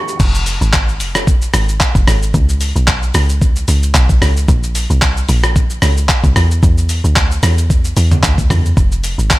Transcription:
Already playing: grand piano C#6
0.08 shaker
0.20 log drum bass F1, kick, crash, shaker
0.35 shaker
0.46 open hi-hat, shaker
0.61 log drum bass G#1, shaker
0.73 kick, clap, shaker
0.88 shaker
1.00 log drum bass F1, open hi-hat, shaker
1.15 cross-stick, shaker
1.27 kick, shaker
1.42 shaker
1.54 log drum bass G#1, cross-stick, open hi-hat, shaker
1.69 shaker
1.81 kick, clap, shaker
1.95 log drum bass F1, kick, shaker
2.07 log drum bass G#1, cross-stick, open hi-hat, shaker
2.23 shaker
2.34 log drum bass C#2, kick, shaker
2.49 shaker
2.61 open hi-hat, shaker
2.76 log drum bass B1, shaker
2.88 kick, clap, shaker
3.03 shaker
3.14 log drum bass C#2, cross-stick, open hi-hat, shaker
3.29 shaker
3.42 kick, shaker
3.56 shaker
3.68 log drum bass C#2, open hi-hat, shaker
3.83 shaker
3.95 log drum bass B1, kick, clap, shaker
4.09 kick, shaker
4.22 log drum bass C#2, cross-stick, open hi-hat, shaker
4.37 shaker
4.48 log drum bass A#1, kick, shaker
4.63 shaker
4.75 open hi-hat, shaker
4.90 log drum bass C2, shaker
5.02 kick, clap, shaker
5.17 shaker
5.29 log drum bass A#1, open hi-hat, shaker
5.44 cross-stick, shaker
5.56 kick, shaker
5.70 shaker
5.82 log drum bass C#2, cross-stick, open hi-hat, shaker
5.97 shaker
6.09 kick, clap, shaker
6.24 log drum bass C2, kick, shaker
6.36 log drum bass E2, cross-stick, open hi-hat, shaker
6.51 shaker
6.63 log drum bass E2, kick, shaker
6.78 shaker
6.89 open hi-hat, shaker
7.04 log drum bass D2, shaker
7.16 kick, clap, shaker
7.31 shaker
7.43 log drum bass E2, cross-stick, open hi-hat, shaker
7.58 shaker
7.70 kick, shaker
7.84 shaker
7.97 log drum bass E2, open hi-hat, shaker
8.12 mid tom, shaker
8.23 log drum bass D2, kick, clap, shaker
8.38 kick, shaker
8.50 log drum bass E2, cross-stick, mid tom, open hi-hat, shaker
8.66 shaker
8.77 log drum bass F1, kick, shaker
8.92 shaker
9.04 open hi-hat, shaker
9.18 log drum bass G#1, shaker
9.30 kick, clap, shaker

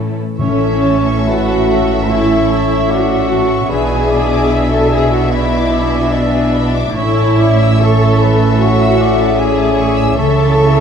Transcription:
Already playing: cello section A2, harp A2 E3 A3 E4, viola section A3 C#4, violin section E4 A4
0.39 double bass section A1, cello section A2, timpani A2, harp A2, french horn section C#4 E4, viola section C#4, bassoon C#4, violin section A4 C#5 E5, cor anglais C#5, flute C#5, clarinet E5
0.63 violin section E5
0.84 harp E3, violin section A5
1.08 violin section C#6
1.28 harp E4, viola section F#4, cor anglais B4, flute F#5, violin section A5
1.53 violin section E5
1.69 harp E3, cor anglais A4
1.74 violin section C#5
1.94 violin section E5
2.09 harp A2, viola section E4, cor anglais C#5, flute E5
2.14 violin section A5
2.34 violin section C#6
2.52 harp A3, violin section A5
2.72 violin section E5
2.90 harp E4, viola section F#4, violin section C#5, cor anglais D5, flute F#5
3.11 violin section E5
3.29 harp E3, cor anglais C#5, violin section A5
3.50 violin section C#6
3.69 double bass section B1, cello section B2, harp B2, bassoon D4, viola section G#4, cor anglais B4, violin section D5 E5, clarinet E5, flute G#5
3.73 french horn section D4 E4
3.91 violin section G#5
4.10 harp B3, cor anglais D5, violin section B5
4.33 violin section D6
4.51 harp E4, cor anglais E5, violin section B5
4.72 viola section A4, violin section G#5, flute A5
4.93 harp B3, viola section G#4, violin section E5, flute G#5
5.12 viola section F#4, flute F#5, violin section G#5
5.32 harp B2, viola section E4, cor anglais B4, flute E5, violin section B5
5.52 violin section D6
5.72 harp G#3, cor anglais D5, violin section B5
5.91 violin section G#5
6.11 viola section D4, harp E4, flute D5, cor anglais E5, violin section E5
6.33 violin section G#5
6.53 harp B3, violin section B5
6.74 violin section D6
6.95 double bass section A1, harp A2, cello section A2, bassoon C#4, french horn section C#4 E4, viola section E4, cor anglais C#5, violin section C#5 E5, flute E5, clarinet E5
7.19 violin section A5
7.39 harp E3, cor anglais D5, violin section C#6
7.62 violin section E6
7.82 harp E4, viola section A4, cor anglais C#5, flute A5, violin section C#6
8.04 violin section A5
8.22 harp E3, cor anglais B4, violin section E5
8.44 violin section A5
8.61 harp A2, viola section F#4, cor anglais C#5, flute F#5, violin section C#6
8.82 violin section E6
9.01 cor anglais D5, violin section C#6
9.19 violin section A5
9.38 harp E4, viola section G#4, violin section E5, flute G#5
9.57 violin section A5
9.78 harp E3, violin section C#6
9.97 violin section E6
10.16 double bass section C#2, harp C#3, cello section C#3, bassoon A3, french horn section A3 E4, viola section A4, violin section C#5 E5, cor anglais C#5, clarinet E5, flute A5
10.36 violin section A5
10.56 harp C#4, violin section C#6
10.77 violin section E6

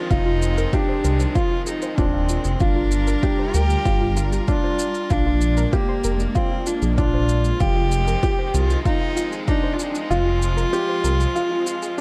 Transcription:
Already playing: string section D#3 F3 G#3 C4, cello F4
0.10 detuned saw bass F1, cello D#4, grand piano F4, kick, shaker
0.26 synth arpeggio sound F4
0.42 shaker
0.58 synth arpeggio sound A#4, shaker
0.73 cello D4, synth arpeggio sound F4, grand piano G4, kick, shaker
0.89 synth arpeggio sound C5
1.04 detuned saw bass C2, synth arpeggio sound A#4, shaker
1.20 shaker
1.35 grand piano F4, cello F4, kick, shaker
1.51 synth arpeggio sound F4
1.67 cello D#4, synth arpeggio sound G#4, shaker
1.82 synth arpeggio sound C5, shaker
1.98 detuned saw bass D#1, cello C4, grand piano D4, synth arpeggio sound F4, kick, shaker
2.13 synth arpeggio sound F5
2.29 synth arpeggio sound F4, shaker
2.44 detuned saw bass F1, shaker
2.60 detuned saw bass G1, string section G3 D4 F4 A#4, cello D4, grand piano F4, kick, shaker
2.76 synth arpeggio sound F4
2.91 shaker
3.07 synth arpeggio sound A#4, shaker
3.23 synth arpeggio sound F4, grand piano G4, kick, shaker
3.39 synth arpeggio sound C5
3.54 detuned saw bass D2, cello G4, synth arpeggio sound A#4, shaker
3.70 shaker
3.85 detuned saw bass G1, grand piano F4, kick, shaker
4.01 synth arpeggio sound F4
4.17 synth arpeggio sound F4, shaker
4.32 synth arpeggio sound G4, shaker
4.48 grand piano D4, synth arpeggio sound F4, cello F4, kick, shaker
4.64 synth arpeggio sound C5
4.79 shaker
4.94 shaker
5.10 detuned saw bass A#1, string section G#3 A#3, cello D4, grand piano F4, kick, shaker
5.26 synth arpeggio sound F4
5.41 shaker
5.57 synth arpeggio sound A#4, shaker
5.73 cello A#3, synth arpeggio sound F4, grand piano G4, kick, shaker
5.89 synth arpeggio sound C5
6.04 detuned saw bass F1, synth arpeggio sound A#4, shaker
6.20 shaker
6.35 cello C4, grand piano F4, kick, shaker
6.51 synth arpeggio sound F4
6.66 cello D4, synth arpeggio sound F4, shaker
6.82 detuned saw bass A#1, synth arpeggio sound G#4, shaker
6.98 grand piano D4, cello F4, synth arpeggio sound F4, kick, shaker
7.14 synth arpeggio sound C5
7.29 shaker
7.44 shaker
7.60 detuned saw bass F1, string section D#3 F3 G#3 C4, grand piano F4, cello G4, kick, shaker
7.76 synth arpeggio sound F4
7.92 shaker
8.07 synth arpeggio sound A#4, shaker
8.23 synth arpeggio sound F4, grand piano G4, kick, shaker
8.39 synth arpeggio sound C5
8.47 cello G4
8.54 detuned saw bass C2, cello F4, synth arpeggio sound A#4, shaker
8.70 shaker
8.85 cello D#4, grand piano F4, kick, shaker
9.01 synth arpeggio sound F4
9.16 synth arpeggio sound F4, shaker
9.32 synth arpeggio sound G#4, shaker
9.47 grand piano D4, cello D#4, synth arpeggio sound F4, kick, shaker
9.63 synth arpeggio sound C5
9.73 cello F4
9.79 cello D#4, shaker
9.92 cello D4, shaker
10.00 cello D#4
10.10 detuned saw bass F1, string section F4, cello F4, grand piano F4, shaker
10.26 synth arpeggio sound F4
10.42 shaker
10.57 synth arpeggio sound A#4, shaker
10.73 synth arpeggio sound F4, grand piano G4, shaker
10.89 synth arpeggio sound C5
11.04 detuned saw bass C2, synth arpeggio sound A#4, shaker
11.20 shaker
11.35 grand piano F4, shaker
11.51 synth arpeggio sound F4
11.67 synth arpeggio sound F4, shaker
11.82 synth arpeggio sound G#4, shaker

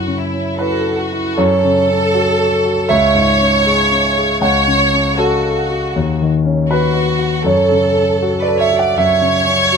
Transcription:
Already playing: grand piano F#2 C#3 C#4 E4 A4 F#5, violin section F#4
0.07 grand piano C#3
0.18 violin section E4
0.33 grand piano C#4
0.58 grand piano E4 B4, violin section F#4 A4
0.86 grand piano A4
0.97 violin section F#4
1.12 grand piano E4
1.38 grand piano F#2 C#5, violin section A4
1.64 grand piano C#3
1.90 grand piano C#4
2.14 grand piano F#4
2.39 grand piano A4
2.65 grand piano F#4
2.88 grand piano C#2 E5, violin section C#5
3.15 grand piano G#2
3.40 grand piano C#4
3.66 grand piano G#4
3.91 grand piano C#4
4.18 grand piano G#4
4.41 grand piano C#2 F#5, violin section C#5
4.67 grand piano C#3
4.94 grand piano C#4
5.18 violin section F#4, grand piano F#4 A4
5.44 grand piano A4
5.70 grand piano F#4
5.96 grand piano D#2
6.21 grand piano D#3
6.45 grand piano C#4
6.70 violin section F#4, grand piano F#4 B4
6.94 grand piano B4
7.19 grand piano F#4
7.44 grand piano F#2 C#5, violin section A4
7.71 grand piano C#3
7.97 grand piano C#4
8.22 grand piano F#4
8.40 violin section B4, grand piano D5
8.47 grand piano A4
8.57 violin section C#5, grand piano E5
8.72 grand piano F#4
8.78 violin section D5, grand piano F#5
8.97 grand piano F#2 E5, violin section C#5
9.21 grand piano C#3
9.47 grand piano C#4
9.72 grand piano F#4

